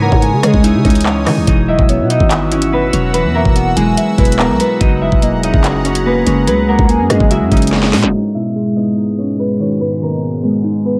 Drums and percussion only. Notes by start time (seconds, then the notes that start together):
0.12 kick
0.22 closed hi-hat
0.43 cross-stick, closed hi-hat
0.54 kick
0.64 closed hi-hat
0.85 kick, closed hi-hat
0.90 closed hi-hat
0.95 closed hi-hat
1.01 closed hi-hat
1.06 clap
1.27 cross-stick, clap, open hi-hat
1.47 kick, closed hi-hat
1.79 kick
1.89 closed hi-hat
2.10 closed hi-hat
2.20 kick
2.31 clap, closed hi-hat
2.52 closed hi-hat
2.62 closed hi-hat
2.93 closed hi-hat
3.14 closed hi-hat
3.45 kick
3.56 closed hi-hat
3.77 closed hi-hat
3.97 closed hi-hat
4.18 kick, closed hi-hat
4.25 closed hi-hat
4.32 closed hi-hat
4.39 clap
4.60 closed hi-hat
4.81 kick, closed hi-hat
5.12 kick
5.22 closed hi-hat
5.43 closed hi-hat
5.54 kick
5.64 clap, closed hi-hat
5.85 closed hi-hat
5.95 closed hi-hat
6.27 closed hi-hat
6.47 closed hi-hat
6.79 kick
6.89 closed hi-hat
7.10 cross-stick, closed hi-hat
7.20 kick
7.31 closed hi-hat
7.52 kick, closed hi-hat
7.57 closed hi-hat
7.62 closed hi-hat
7.67 closed hi-hat
7.72 snare
7.83 snare
7.93 snare, open hi-hat
8.04 snare